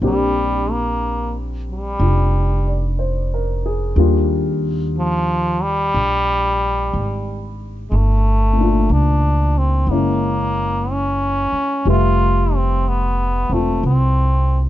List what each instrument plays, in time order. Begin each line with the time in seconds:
0.02 upright bass A#1, trombone G3, grand piano A#3 C4 D4 G4
0.71 trombone A#3
1.71 trombone G3
1.99 upright bass F1, grand piano D4 F4
2.67 grand piano D5
2.99 grand piano C5
3.34 grand piano A#4
3.66 grand piano G#4
3.96 upright bass D#2, grand piano G3 A#3 D4 F4
4.98 trombone F3
5.62 trombone G3
5.94 upright bass A#1
6.93 upright bass G#1
7.90 upright bass G1, trombone G#3 A3
8.53 grand piano A#2 A3
8.60 grand piano D4 F4
8.89 upright bass C#2, trombone D4
9.58 trombone C4
9.87 upright bass F#1, grand piano G#3
9.91 grand piano A#3 C#4 E4, trombone A#3
10.92 trombone C#4
11.53 muted upright bass stroke
11.85 upright bass F1, grand piano G3 A3 B4 E5
11.90 trombone F4
12.55 trombone C4
12.88 trombone B3
13.49 upright bass E1, trombone A3, grand piano C4
13.54 grand piano F4
13.83 upright bass C2, trombone C4